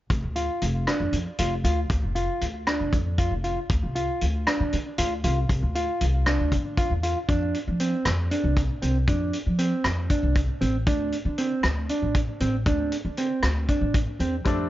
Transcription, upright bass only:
0.10 F1
0.24 D2
0.62 F1
1.00 F2
1.13 F2
1.39 F1
1.64 D2
1.90 D2
2.03 F1
2.41 D2
2.80 F1
2.93 F2
3.31 F1
3.70 D2
3.83 C2
4.22 D2
4.60 D3
4.73 D3
4.98 D2
5.24 C2
5.49 C2
5.63 D2
6.01 C2
6.40 D2
6.52 D3
6.90 E2
7.29 F2
7.68 F3
8.06 F2
8.44 C2
8.82 C2
9.08 F2
9.47 F3
9.85 F2
10.23 C2
10.61 A1
10.87 D2
11.25 D3
11.64 D2
12.02 A1
12.41 A1
12.66 D2
13.05 D3
13.43 D2
13.81 A1
14.19 E2
14.46 F2

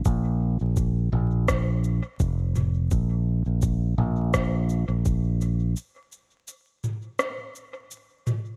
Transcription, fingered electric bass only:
0.05 A#1
0.61 A#1
1.13 A#1
2.20 F1
2.91 A#1
3.46 A#1
3.98 A#1
4.88 A#1

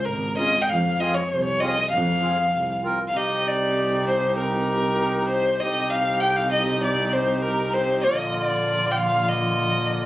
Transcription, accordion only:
0.37 C#4 F4 G#4
0.98 C4 F4 G#4
1.60 C4 F4 G#4
2.21 C4 F4 G#4
2.83 C4 F4 A#4
3.12 C4 D#4 G4
5.58 C4 D#4 G4
8.05 D3 A#3 F4

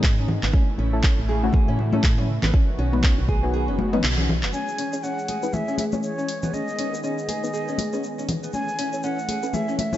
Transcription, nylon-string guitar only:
0.18 C#4
0.43 B3
0.54 C#4
0.79 C#4
1.04 C#4
1.29 G#4
1.54 G#4
1.68 C#4
1.93 C#4
2.18 C#4
2.43 B3
2.54 C#4
2.79 C#4
3.04 C#4
3.29 G#4
3.54 G#4
3.68 C#4
3.93 C#4
4.18 C#4
4.43 B3
4.53 C#4
4.78 C#4
5.03 C#4
5.29 G#4
5.54 G#4
5.68 C#4
5.93 C#4
6.18 C#4
6.43 B3
6.53 C#4
6.78 C#4
7.04 C#4
7.28 G#4
7.53 G#4
7.68 C#4
7.93 C#4
8.18 C#4
8.43 B3
8.54 C#4
8.79 C#4
9.04 C#4
9.29 G#4
9.54 G#4
9.68 C#4
9.93 C#4

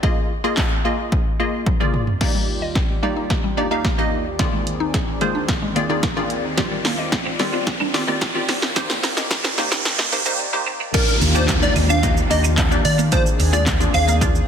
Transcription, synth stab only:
0.03 A#3 F4 G#4 D#5
0.44 A#3 F4 G#4 D#5
0.85 A#3 F4 G#4 D#5
1.40 A#3 F4 G#4 D#5
1.80 A#3 F4 G#4 D5
2.21 A#3 D#4 G4 D5
3.03 A#3 D#4 G4 D5
3.57 A#3 D#4 G4 D5
3.71 A#3 D#4 G4 F5
3.98 A#3 D#4 G4 D#5
4.39 D#3 A#3 F4 G#4 D5
5.21 D#3 A#3 F4 G#4 C5
5.76 D#3 A#3 F4 G#4 D5
5.89 D#3 A#3 F4 G#4 D5
6.16 D#3 A#3 F4 G#4 D5
6.57 D#3 C4 F4 G4 D5
7.39 D#3 C4 F4 G4 D5
7.94 D#3 C4 F4 G4 D5
8.08 D#3 C4 F4 G4 D5
8.35 D#3 C4 F4 G4 D5
8.76 D#3 A#3 D#4 G4 C5
9.57 D#3 A#3 D#4 G4 C5
10.12 D#3 A#3 D#4 G4 C5
10.26 D#3 A#3 D#4 G4 C5
10.53 D#3 A#3 D#4 G4 C5
10.94 A#3 D4 D#4 G4 D5
11.35 A#3 D4 D#4 G4 D5
11.62 A#3 D4 D#4 G4 D5
12.03 A#3 D4 D#4 G4 D#5
12.30 A#3 D4 D#4 G4 D5
12.71 A#3 D4 D#4 G4 D5
13.12 A#3 D4 F4 G#4 D5
13.53 A#3 D4 F4 G#4 D5
13.80 A#3 D4 F4 G#4 D5
14.21 A#3 D4 F4 G#4 D5

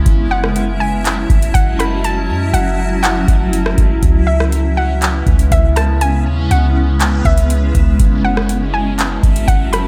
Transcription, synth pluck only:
0.31 F#5
0.80 G#5
1.54 F#5
1.79 B5
2.05 A5
2.54 F#5
3.03 F#5
4.27 E5
4.77 F#5
5.52 E5
5.76 A5
6.01 G#5
6.51 F#5
7.25 E5
8.25 F#5
8.74 G#5
9.48 F#5
9.73 B5

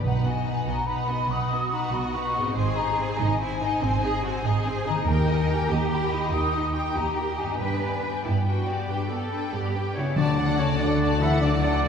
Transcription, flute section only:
0.04 F#5
0.25 G#5
0.68 A#5
0.87 B5
1.30 D#6
1.71 A#5
1.92 B5
2.13 C#6
2.57 C6
2.76 A#5
3.18 G#5
4.86 A#5
5.08 G5
5.30 G#5
5.72 A#5
5.93 B5
6.32 D#6
6.75 G5
6.95 A#5
7.37 G#5
7.58 G#5
8.25 G5
9.96 C#5
10.18 D5
10.58 C#5
10.81 D5
11.21 E5
11.41 D5
11.65 D5

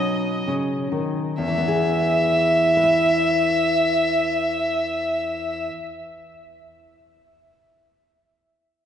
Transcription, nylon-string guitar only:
Already playing: B2 F#3 C#4 D#4
0.48 C#3
0.92 D#3
1.38 E2
1.48 E3
1.58 B3
1.68 G#4
2.77 B4
2.84 E5

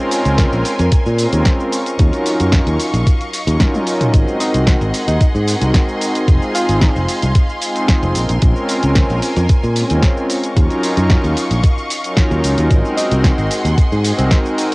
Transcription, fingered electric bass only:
0.26 C#2
0.53 A#1
0.79 F2
1.06 A#2
1.33 D#2
1.99 D#2
2.40 F#2
2.67 D#2
2.94 A#1
3.47 D#2
4.14 G#1
4.54 C2
4.81 G#1
5.08 D#2
5.21 muted fingered electric bass stroke
5.35 G#2
5.62 C2
6.28 F1
6.69 G#1
6.96 F1
7.23 C2
8.03 F1
8.16 A#1
8.30 A#1
8.42 A#1
8.83 C#2
9.10 A#1
9.37 F2
9.50 muted fingered electric bass stroke
9.64 A#2
9.91 D#2
10.57 D#2
10.97 F#2
11.24 D#2
11.51 A#1
12.31 D#2
12.44 C#2
12.58 D#2
12.71 G#1
13.12 C2
13.38 G#1
13.65 D#2
13.78 muted fingered electric bass stroke
13.92 G#2
14.19 C2

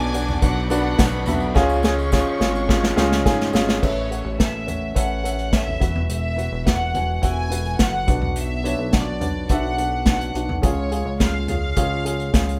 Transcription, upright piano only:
Already playing: B2 D4 F#4 B4 F#5
0.13 D4 F#4 B4 F#5
0.41 D4 F#4 B4 F#5
0.70 D4 F#4 B4 F#5
0.98 D4 F#4 B4 F#5
1.26 D4 F#4 B4 E5
1.55 C#3 C#4 F4 G#4 F5
1.83 C#4 F4 G#4 C#5
2.11 C#4 F4 G#4 F5
2.40 C#4 F4 G#4 F5
2.68 C#4 F4 G#4 F5
2.96 C#4 F4 G#4 F5
3.25 C#4 F4 G#4 G#5
3.53 C#4 F4 G#4 F5
3.82 A2 C#4 A4 B4 E5
4.10 C#4 A4 B4 F#5
4.38 C#4 A4 B4 E5
4.66 C#4 A4 B4 C#5
4.94 C#4 A4 B4 E5
5.23 C#4 A4 B4 E5
5.52 C#4 A4 B4 E5
5.79 E3 E4 F#4 B4 F#5
6.36 E4 F#4 B4 F#5
6.65 E4 F#4 B4 F#5
6.94 E4 F#4 B4 G#5
7.22 E4 F#4 B4 F#5
7.50 E4 F#4 B4 F#5
7.78 E4 F#4 B4 F#5
8.07 B2 D4 F#4 B4 F#5
8.64 D4 F#4 B4 C#5
8.91 D4 F#4 B4 F#5
9.20 D4 F#4 B4 F#5
9.50 D4 F#4 B4 E5
9.78 D4 F#4 B4 F#5
10.05 D4 F#4 B4 F#5
10.34 D4 F#4 B4 F#5
10.62 C#3 C#4 F4 G#4 F5
10.90 C#4 F4 G#4 F5
11.19 C#4 F4 G#4 F5
11.48 C#4 F4 G#4 F5
11.76 C#4 F4 G#4 F5
12.04 C#4 F4 G#4 F5
12.33 C#4 F4 G#4 F5

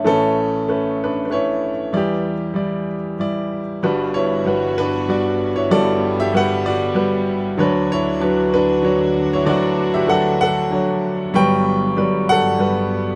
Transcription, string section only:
3.85 G2 D3 B3 F#4
5.74 G3
7.58 D2 D4 F#4
11.34 G2 B3

